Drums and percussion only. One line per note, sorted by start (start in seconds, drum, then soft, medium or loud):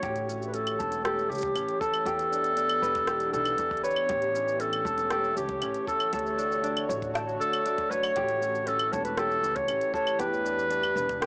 0.03 kick loud
0.03 closed hi-hat medium
0.03 shaker soft
0.16 closed hi-hat soft
0.16 shaker soft
0.29 shaker medium
0.42 shaker soft
0.54 closed hi-hat medium
0.54 shaker soft
0.67 closed hi-hat soft
0.67 claves medium
0.67 shaker soft
0.80 kick medium
0.80 shaker medium
0.92 closed hi-hat soft
0.92 shaker soft
1.05 cross-stick medium
1.05 closed hi-hat medium
1.05 shaker soft
1.19 shaker soft
1.31 shaker soft
1.34 shaker soft
1.38 shaker medium
1.41 kick loud
1.41 closed hi-hat soft
1.41 shaker medium
1.55 closed hi-hat medium
1.55 claves medium
1.55 shaker soft
1.68 closed hi-hat soft
1.68 shaker soft
1.81 kick loud
1.81 shaker medium
1.94 claves medium
1.94 shaker soft
2.06 closed hi-hat medium
2.06 shaker soft
2.19 closed hi-hat soft
2.19 shaker soft
2.33 shaker medium
2.44 closed hi-hat soft
2.44 shaker soft
2.57 closed hi-hat medium
2.57 shaker soft
2.69 closed hi-hat soft
2.69 claves medium
2.69 shaker soft
2.83 shaker medium
2.95 kick loud
2.95 closed hi-hat soft
2.95 shaker soft
3.07 cross-stick medium
3.07 closed hi-hat medium
3.07 shaker soft
3.20 closed hi-hat soft
3.20 shaker soft
3.34 shaker medium
3.45 closed hi-hat soft
3.45 claves medium
3.45 shaker soft
3.58 closed hi-hat medium
3.58 shaker soft
3.71 kick loud
3.71 shaker soft
3.77 closed hi-hat soft
3.84 shaker medium
3.91 shaker soft
3.96 claves medium
4.09 kick loud
4.09 closed hi-hat medium
4.09 shaker soft
4.22 closed hi-hat soft
4.22 shaker soft
4.36 shaker medium
4.48 shaker soft
4.60 closed hi-hat medium
4.60 shaker soft
4.73 closed hi-hat soft
4.73 claves medium
4.73 shaker soft
4.85 kick medium
4.85 shaker medium
4.98 closed hi-hat soft
4.98 shaker soft
5.11 cross-stick medium
5.11 closed hi-hat medium
5.11 shaker soft
5.24 shaker soft
5.37 shaker medium
5.49 kick medium
5.49 closed hi-hat soft
5.49 shaker soft
5.62 closed hi-hat medium
5.62 claves medium
5.62 shaker soft
5.74 closed hi-hat soft
5.74 shaker soft
5.87 kick loud
5.87 shaker medium
6.00 claves medium
6.00 shaker soft
6.13 closed hi-hat medium
6.13 shaker soft
6.19 closed hi-hat soft
6.26 shaker soft
6.39 shaker medium
6.52 shaker soft
6.64 closed hi-hat medium
6.64 shaker soft
6.77 closed hi-hat soft
6.77 claves medium
6.77 shaker soft
6.90 shaker medium
7.02 kick loud
7.02 closed hi-hat soft
7.02 shaker soft
7.15 cross-stick medium
7.15 closed hi-hat medium
7.15 shaker soft
7.29 shaker soft
7.41 shaker medium
7.53 closed hi-hat soft
7.53 claves medium
7.53 shaker soft
7.66 closed hi-hat medium
7.66 shaker soft
7.78 kick medium
7.78 closed hi-hat soft
7.78 shaker soft
7.92 shaker medium
8.03 claves medium
8.03 shaker soft
8.16 kick medium
8.16 closed hi-hat medium
8.16 shaker soft
8.29 closed hi-hat soft
8.29 shaker soft
8.42 shaker medium
8.55 shaker soft
8.67 closed hi-hat medium
8.67 shaker soft
8.79 closed hi-hat soft
8.79 claves medium
8.79 shaker soft
8.93 kick medium
8.93 shaker medium
9.05 closed hi-hat soft
9.05 shaker soft
9.17 cross-stick medium
9.17 closed hi-hat medium
9.17 shaker soft
9.31 shaker soft
9.44 shaker medium
9.56 kick medium
9.56 closed hi-hat soft
9.56 shaker soft
9.68 closed hi-hat medium
9.68 claves medium
9.68 shaker soft
9.81 closed hi-hat soft
9.81 shaker soft
9.94 kick medium
9.94 shaker medium
10.07 claves medium
10.07 shaker soft
10.20 closed hi-hat medium
10.20 shaker soft
10.33 shaker soft
10.46 shaker medium
10.59 shaker soft
10.71 closed hi-hat medium
10.71 shaker soft
10.83 claves medium
10.83 shaker soft
10.97 shaker medium
11.09 kick loud
11.09 closed hi-hat soft
11.09 shaker soft
11.22 cross-stick medium
11.22 closed hi-hat medium
11.22 shaker soft